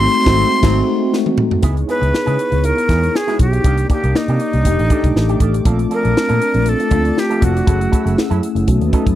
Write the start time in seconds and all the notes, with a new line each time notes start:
Already playing: G#3 A3 C4 D#4 F#4 C6
0.25 G#1 F#3 A3 C4 D#4 F#4 A4, kick, snare
0.62 G#1 F#3 A3 C4 D#4 F#4 A4, kick, snare, crash
1.13 snare
1.26 high tom
1.38 mid tom
1.51 floor tom
1.62 C#2 G#3 B3 D#4 E4 G#4 C#5 C#6, kick, closed hi-hat
1.77 muted clean electric guitar stroke, closed hi-hat
1.87 G#3 B3 E4 G#4 B4, closed hi-hat
2.01 C#2 G#3 B3 E4 G#4, closed hi-hat
2.13 B3 D#4 E4 G#4, muted clean electric guitar stroke, snare
2.26 C#3 G#3 B3 E4 G#4, closed hi-hat
2.38 muted clean electric guitar stroke, closed hi-hat
2.51 C#2 B3 D#4 E4 G#4, muted clean electric guitar stroke, closed hi-hat
2.63 A#4, muted clean electric guitar stroke, closed hi-hat
2.77 muted clean electric guitar stroke, closed hi-hat
2.88 E2 G#3 B3 D#4 E4 G#4, kick, snare, closed hi-hat
3.01 muted clean electric guitar stroke, closed hi-hat
3.14 G#4, muted clean electric guitar stroke, snare
3.27 G#3 B3 D#4 E4 F#4 G#4, snare, closed hi-hat
3.39 B1 G4, muted clean electric guitar stroke, kick, closed hi-hat
3.53 muted clean electric guitar stroke, closed hi-hat
3.64 C2 D#3 A#3 D4 D#4 G4 A#4 D5 D6, kick, closed hi-hat
3.78 muted clean electric guitar stroke, closed hi-hat
3.89 D#3 A#3 D4 G4, kick, closed hi-hat
4.03 C2 D#3 A#3 D4 G4, closed hi-hat
4.15 A#3 D4 D#4 G4, muted clean electric guitar stroke, snare
4.28 C3 D#3 A#3 D4 G4, closed hi-hat
4.40 muted clean electric guitar stroke, closed hi-hat
4.52 C2 A#3 D4 D#4 G4, muted clean electric guitar stroke, closed hi-hat
4.65 F1 A3 D4 D#4 G4 A4 G5, muted clean electric guitar stroke, kick, closed hi-hat
4.79 A1, muted clean electric guitar stroke, closed hi-hat
4.90 D#3 A3 D4 D#4 G4 A4, kick, closed hi-hat
5.04 C2, muted clean electric guitar stroke, kick, closed hi-hat
5.15 A1, muted clean electric guitar stroke, snare
5.28 D#3 A3 D4 D#4 G4, closed hi-hat
5.40 A1 D#3 A3 D4 G4, kick, closed hi-hat
5.54 muted clean electric guitar stroke, closed hi-hat
5.64 A#1 F3 A3 A#3 C4 D4 F4 A4 D5 A5, kick, closed hi-hat
5.79 muted clean electric guitar stroke, closed hi-hat
5.90 F3 A#3 D4 A4 A#4, closed hi-hat
6.03 A#1 F3 A#3 D4 A4, closed hi-hat
6.15 A3 C4 D4 F4, muted clean electric guitar stroke, snare
6.29 A#2 F3 A#3 D4 A4, closed hi-hat
6.40 muted clean electric guitar stroke, closed hi-hat
6.53 A#1 A3 C4 D4 F4, muted clean electric guitar stroke, closed hi-hat
6.65 A4, muted clean electric guitar stroke, closed hi-hat
6.79 muted clean electric guitar stroke, closed hi-hat
6.91 D2 F3 A3 A#3 C4 D4 F4 A4, kick, closed hi-hat
7.04 muted clean electric guitar stroke, closed hi-hat
7.17 G4, muted clean electric guitar stroke, snare
7.29 F3 A3 A#3 C4 D4 F4 A4, closed hi-hat
7.41 F1 F3 A#3 D4 F#4 A4, kick, closed hi-hat
7.55 muted clean electric guitar stroke, closed hi-hat
7.65 F#1 F#3 A3 C#4 E4 G#4 A4 F#5 E6, kick, closed hi-hat
7.80 muted clean electric guitar stroke, closed hi-hat
7.90 F#3 C#4 E4 A4, kick, closed hi-hat
8.05 F#1 F#3 C#4 E4 A4, closed hi-hat
8.16 A3 C#4 E4 G#4, muted clean electric guitar stroke, muted fingered electric bass stroke, snare
8.30 F#2 F#3 C#4 E4 A4, closed hi-hat
8.42 muted clean electric guitar stroke, closed hi-hat
8.55 F#1 A3 C#4 E4 G#4, muted clean electric guitar stroke, closed hi-hat
8.67 B1 A3 C#4 D#4 F#4 B4 A5 D#6, muted clean electric guitar stroke, kick, closed hi-hat
8.81 D#2, muted clean electric guitar stroke, closed hi-hat
8.92 F#3 A3 B3 C#4 D#4 A4, kick, closed hi-hat
9.07 F#2, muted clean electric guitar stroke, kick, closed hi-hat